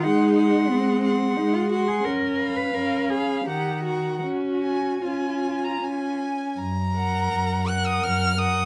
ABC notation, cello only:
X:1
M:3/4
L:1/16
Q:1/4=84
K:F#
V:1 name="Cello"
D4 ^B,4 D E F G | A3 B A2 G2 =G2 F2 | F4 E6 z2 | F,,4 F,,4 F,,4 |]